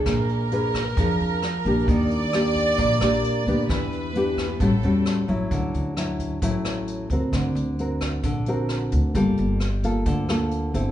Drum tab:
HH |xxxxxxxx|xxxxxxxx|xxxxxxxx|xxxxxxxx|
SD |r--r--r-|--r--r--|r--r--r-|--r--r--|
BD |o--oo--o|o--oo--o|o--oo--o|o--oo--o|

HH |xxxxxxxx|xxxxxxxx|
SD |r--r--r-|--r--r--|
BD |o--oo--o|o--oo--o|